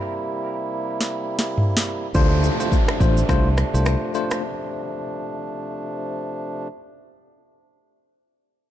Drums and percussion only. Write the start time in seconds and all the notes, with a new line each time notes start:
1.01 snare
1.39 snare
1.58 mid tom
1.77 snare
2.15 kick, shaker
2.44 shaker
2.60 shaker
2.72 kick, shaker
2.88 finger snap, cross-stick
3.00 kick, shaker
3.17 shaker
3.29 finger snap, kick, cross-stick, shaker
3.57 finger snap, cross-stick, shaker
3.75 shaker
3.86 finger snap, cross-stick, shaker
4.14 shaker
4.31 finger snap, cross-stick, shaker